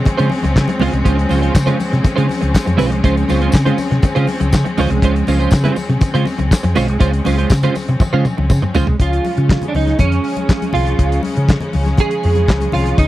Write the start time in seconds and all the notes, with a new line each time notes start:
Already playing: F3 G#3 C4 C#4
0.05 muted fingered electric bass stroke, muted clean electric guitar stroke, kick, closed hi-hat, muted conga, low conga
0.17 C#3 G#3 C#4 F4 C5, closed hi-hat
0.30 muted clean electric guitar stroke, open hi-hat, muted conga, high conga
0.43 C#2, muted clean electric guitar stroke, closed hi-hat, high conga
0.56 C#3, muted clean electric guitar stroke, kick, snare, clap
0.68 muted clean electric guitar stroke, closed hi-hat, high conga
0.80 C#2 G#3 C#4 F4 C5, open hi-hat, muted conga, low conga
0.93 C2, muted clean electric guitar stroke, closed hi-hat
1.04 C#2 G#3 C#4 F4 C5, kick, closed hi-hat, muted conga
1.18 muted clean electric guitar stroke, closed hi-hat
1.29 C#2 G#3 C#4 F4 C5, open hi-hat, tambourine, muted conga, high conga
1.41 G#3 C#4 F4 C5, closed hi-hat
1.54 C#3, muted clean electric guitar stroke, kick, snare, clap, tambourine
1.66 G#3 C#4 F4 C5, closed hi-hat, low conga
1.79 muted clean electric guitar stroke, open hi-hat, tambourine, muted conga, high conga
1.91 C3, muted clean electric guitar stroke, snare, closed hi-hat, high conga
2.03 muted clean electric guitar stroke, muted fingered electric bass stroke, kick, closed hi-hat, tambourine, low conga
2.16 C#3 G#3 C#4 F4 C5, closed hi-hat
2.28 muted clean electric guitar stroke, open hi-hat, tambourine, muted conga, high conga
2.41 C#2, muted clean electric guitar stroke, closed hi-hat, high conga
2.54 kick, snare, clap, tambourine, muted conga
2.65 F2, muted clean electric guitar stroke, closed hi-hat, high conga
2.77 B1 G#3 C#4 F4 C5, open hi-hat, tambourine, muted conga, low conga
2.91 C2, muted clean electric guitar stroke, closed hi-hat
3.03 C#2 G#3 C#4 F4 C5, kick, closed hi-hat, tambourine, muted conga
3.16 muted clean electric guitar stroke, closed hi-hat
3.28 C#2 G#3 C#4 F4 C5, open hi-hat, tambourine, muted conga, high conga
3.41 G#3 C#4 F4 C5, closed hi-hat
3.52 C#3, muted clean electric guitar stroke, kick, snare, clap, tambourine
3.65 G#3 C#4 F4 C5, closed hi-hat, low conga
3.78 muted clean electric guitar stroke, open hi-hat, tambourine, muted conga, high conga
3.90 C3, muted clean electric guitar stroke, snare, closed hi-hat, high conga
4.02 muted clean electric guitar stroke, kick, closed hi-hat, tambourine, muted conga, low conga
4.15 C#3 G#3 C#4 F4 C5, closed hi-hat
4.27 muted clean electric guitar stroke, open hi-hat, tambourine, muted conga, high conga
4.40 C#2, muted clean electric guitar stroke, closed hi-hat, high conga
4.53 C#3, muted clean electric guitar stroke, kick, snare, clap, tambourine, muted conga
4.64 muted clean electric guitar stroke, closed hi-hat, high conga
4.77 C#2 G#3 C#4 F4 C5, open hi-hat, tambourine, muted conga, low conga
4.90 C2, muted clean electric guitar stroke, closed hi-hat
5.02 C#2 G#3 C#4 F4 C5, kick, closed hi-hat
5.15 muted clean electric guitar stroke, closed hi-hat
5.27 C#2 G#3 C#4 F4 C5, open hi-hat, tambourine, muted conga, high conga
5.39 G#3 C#4 F4 C5, closed hi-hat
5.51 C#3, muted clean electric guitar stroke, kick, snare, clap, tambourine
5.64 G#3 C#4 F4 C5, closed hi-hat, low conga
5.76 muted clean electric guitar stroke, open hi-hat, tambourine, muted conga, high conga
5.89 C3, muted clean electric guitar stroke, closed hi-hat, high conga
6.01 muted clean electric guitar stroke, kick, closed hi-hat, tambourine, low conga
6.14 C#3 G#3 C#4 F4 C5, closed hi-hat
6.25 muted clean electric guitar stroke, open hi-hat, tambourine, muted conga, high conga
6.38 C#2, muted clean electric guitar stroke, closed hi-hat, high conga
6.51 kick, snare, clap, tambourine, muted conga
6.63 F2, muted clean electric guitar stroke, closed hi-hat, high conga
6.75 B1 G#3 C#4 F4 C5, open hi-hat, tambourine, muted conga, low conga
6.88 C2, muted clean electric guitar stroke, closed hi-hat
6.99 C#2 G#3 C#4 F4 C5, kick, closed hi-hat, tambourine, muted conga
7.13 muted clean electric guitar stroke, closed hi-hat
7.24 C#2 G#3 C#4 F4 C5, open hi-hat, tambourine, muted conga, high conga
7.38 G#3 C#4 F4 C5, closed hi-hat
7.50 C#3, muted clean electric guitar stroke, kick, snare, clap, tambourine
7.63 G#3 C#4 F4 C5, closed hi-hat, low conga
7.75 muted clean electric guitar stroke, open hi-hat, tambourine, muted conga, high conga
7.88 C3, muted clean electric guitar stroke, closed hi-hat, high conga
8.00 muted clean electric guitar stroke, kick, high tom, tambourine, low conga
8.13 C#3 G#3 C#4 F4 C5
8.25 muted clean electric guitar stroke, mid tom, tambourine, muted conga, high conga
8.37 C#2, muted clean electric guitar stroke, high conga
8.50 C#3, muted clean electric guitar stroke, kick, mid tom, tambourine, muted conga
8.62 muted clean electric guitar stroke, mid tom, high conga
8.75 C#2 G#3 C#4 F4 C5, floor tom, tambourine, muted conga, low conga
8.87 C2, muted clean electric guitar stroke, floor tom
8.98 C#2 C#3 F3 G#3 C#4 F4, kick, closed hi-hat, muted conga
9.13 closed hi-hat
9.25 open hi-hat, high conga
9.38 C#3, closed hi-hat
9.49 kick, snare, clap
9.62 closed hi-hat, low conga
9.68 D4
9.75 C#2 D#4, open hi-hat, muted conga, high conga
9.87 snare, closed hi-hat, high conga
9.99 F2 C#4, kick, closed hi-hat, low conga
10.12 closed hi-hat
10.24 open hi-hat, muted conga
10.37 closed hi-hat, high conga
10.49 kick, snare, clap, muted conga
10.62 closed hi-hat, high conga
10.73 C2 F4, open hi-hat, muted conga, low conga
10.87 closed hi-hat
10.99 C#2, kick, closed hi-hat
11.12 closed hi-hat
11.23 open hi-hat, muted conga, high conga
11.37 C#3, closed hi-hat
11.48 kick, snare, clap, muted conga
11.61 closed hi-hat, low conga
11.73 C#2, open hi-hat, muted conga, high conga
11.86 snare, closed hi-hat, high conga
11.97 G#4, kick, closed hi-hat, muted conga, low conga
12.11 closed hi-hat
12.23 F2, open hi-hat, muted conga
12.35 closed hi-hat, high conga
12.48 C#2, kick, snare, clap, muted conga
12.61 closed hi-hat, high conga
12.72 C2 F4, open hi-hat, low conga
12.86 closed hi-hat
12.98 C#2 D#4, kick, closed hi-hat, muted conga